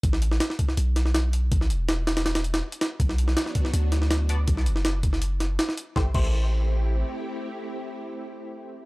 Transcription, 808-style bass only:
\new Staff \with { instrumentName = "808-style bass" } { \clef bass \time 4/4 \key a \dorian \tempo 4 = 162 a,,4 r4 b,,2 | a,,8 e,,2~ e,,8 r4 | b,,4 r4 d,2 | b,,8 fis,,2~ fis,,8 r4 |
a,,8 a,,2~ a,,8 r4 | r1 | }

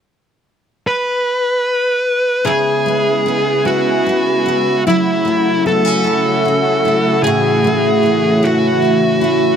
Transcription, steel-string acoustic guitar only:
\new Staff \with { instrumentName = "Steel-string acoustic guitar" } { \time 6/8 \key cis \minor \tempo 4. = 50 r2. | <cis e'>8 gis8 b8 e'8 b8 e'8 | <fis e'>8 a8 b16 cis'16 e'8 cis'8 e'8 | <a, e'>8 a8 cis'8 e'8 cis'8 e'8 | }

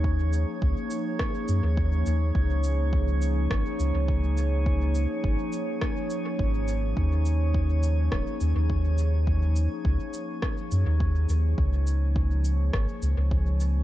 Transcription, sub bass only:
\new Staff \with { instrumentName = "Sub bass" } { \clef bass \time 4/4 \key des \major \tempo 4 = 104 ees,8. r16 des,16 r4 r16 ges,16 ees,8. ees,8 | des,2 aes,,16 r16 des,16 des,4~ des,16~ | des,8. r16 aes,,16 r4. r16 aes,,4 | ees,2 ees,,16 r16 ees,16 ees,4~ ees,16~ |
ees,8. r16 des,16 r4 r16 ges,16 ees,8. ees,8 | des,2 aes,,16 r16 des,16 des,4~ des,16 | }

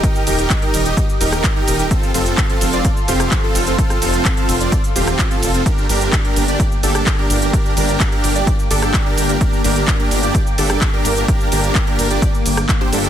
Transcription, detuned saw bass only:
\new Staff \with { instrumentName = "Detuned saw bass" } { \clef bass \time 4/4 \key g \minor \tempo 4 = 128 r8 ees,,8 r8 ees,,8 r8 ees,,8 r8 ees,,8 | r8 f,,8 r8 f,,8 r8 f,,8 r8 f,,8 | r8 f,,8 r8 f,,8 r8 ees,,8 r8 f,,8 | r8 g,,8 r8 g,,8 r8 g,,8 r8 g,,8 |
r8 g,,8 r8 g,,8 r8 g,,8 r8 g,,8 | r8 g,,8 r8 g,,8 r8 g,,8 r8 g,,8 | r8 g,,8 r8 g,,8 r8 g,,8 r8 g,,8 | }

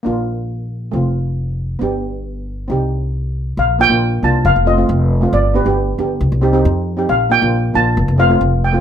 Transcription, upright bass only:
\new Staff \with { instrumentName = "Upright bass" } { \clef bass \time 4/4 \key bes \major \tempo 4 = 136 bes,,2 f,,2 | g,,2 c,2 | bes,,8. bes,,8. c,8 f,,16 f,,8. f,,4 | g,,8. g,,8. g,,8 c,16 c,8. f,4 |
bes,,8. bes,,8. bes,,8 f,,16 f,,8. f,,4 | }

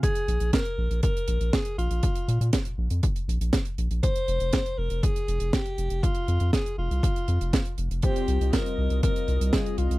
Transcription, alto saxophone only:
\new Staff \with { instrumentName = "Alto saxophone" } { \time 4/4 \key bes \dorian \tempo 4 = 120 aes'4 bes'4 bes'4 aes'8 f'8~ | f'4 r2. | c''4. bes'8 aes'4 g'4 | f'4 aes'8 f'2 r8 |
g'4 bes'4 bes'4 aes'8 f'8 | }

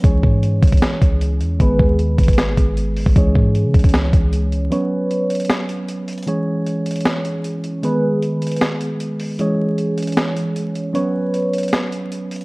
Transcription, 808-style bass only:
\new Staff \with { instrumentName = "808-style bass" } { \clef bass \time 4/4 \key cis \minor \tempo 4 = 154 cis,8 gis,4 cis,8 r8 cis,4 e,8 | gis,,8 dis,4 gis,,4 gis,,4~ gis,,16 gis,,16 | cis,8 gis,8. cis16 cis,16 cis,8. cis,4. | r1 |
r1 | r1 | r1 | r1 | }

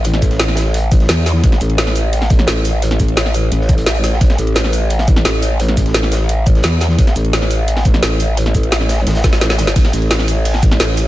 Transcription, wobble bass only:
\new Staff \with { instrumentName = "Wobble bass" } { \clef bass \time 4/4 \key c \mixolydian \tempo 4 = 173 a,,8 a,,2~ a,,8 e,4 | a,,8 a,,2~ a,,8 a,,4~ | a,,8 a,,4. a,,2 | a,,8 a,,2~ a,,8 a,,4~ |
a,,8 a,,2~ a,,8 e,4 | a,,8 a,,2~ a,,8 a,,4~ | a,,8 a,,4. a,,8 a,,4. | a,,8 a,,2~ a,,8 a,,4 | }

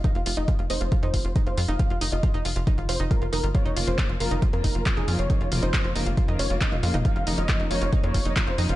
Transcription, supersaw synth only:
\new Staff \with { instrumentName = "Supersaw synth" } { \time 4/4 \key bes \dorian \tempo 4 = 137 f''8 r16 ees''8 r16 c''8 r16 c''8. r16 c''16 r16 f''16~ | f''8 r16 ees''8. r4 c''16 r16 bes'16 r16 bes'16 r16 | des''8 r16 c''8 r16 bes'8 r16 bes'8. r16 aes'16 r16 des''16~ | des''8 r16 c''8. r4 des''16 r16 ees''16 r16 f''16 r16 |
f''8 r16 ees''8 r16 des''8 r16 des''8. r16 c''16 r16 f''16 | }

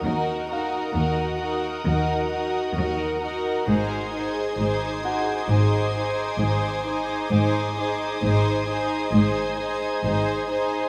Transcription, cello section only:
\new Staff \with { instrumentName = "Cello section" } { \clef bass \time 4/4 \key aes \mixolydian \tempo 4 = 66 ees,4 ees,4 ees,4 ees,4 | aes,4 aes,4 aes,4 aes,4 | aes,4 aes,4 aes,4 aes,4 | }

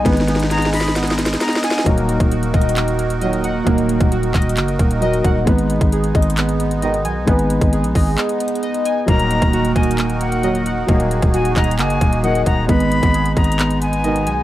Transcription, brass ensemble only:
\new Staff \with { instrumentName = "Brass ensemble" } { \clef bass \time 4/4 \key ees \minor \tempo 4 = 133 r1 | r2. <bes, ees ges>8. r16 | r1 | r2. <aes, ces ees>8. r16 |
r1 | r2. <bes, ees ges>8. r16 | r1 | r2. <aes, ces ees>8. r16 | }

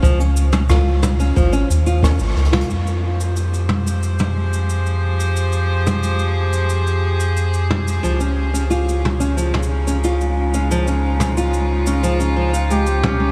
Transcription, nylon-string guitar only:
\new Staff \with { instrumentName = "Nylon-string guitar" } { \time 4/4 \key f \minor \tempo 4 = 90 f16 des'8 des'16 f'8. des'16 f16 des'16 r16 f'16 des'16 r8 f'16 | r1 | r1 | f16 des'8 des'16 f'8. des'16 f16 des'8 des'16 f'8. des'16 |
f16 des'8 des'16 f'8. des'16 f16 des'16 f16 f''16 aes16 r16 des'16 des'16 | }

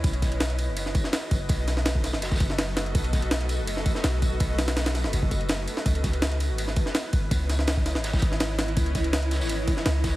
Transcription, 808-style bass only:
\new Staff \with { instrumentName = "808-style bass" } { \clef bass \time 4/4 \key b \mixolydian \tempo 4 = 165 b,,4.~ b,,16 fis,,8. r4 fis,,8 | b,,4.~ b,,16 fis,,8. fis,,4. | b,,4.~ b,,16 fis,,8. r8 b,,4 | b,,4.~ b,,16 fis,,16 fis,,4. r8 |
cis,4.~ cis,16 gis,,8. r4 gis,,8 | cis,4.~ cis,16 gis,,8. gis,,4. | cis,4.~ cis,16 gis,,8. r8 cis,4 | }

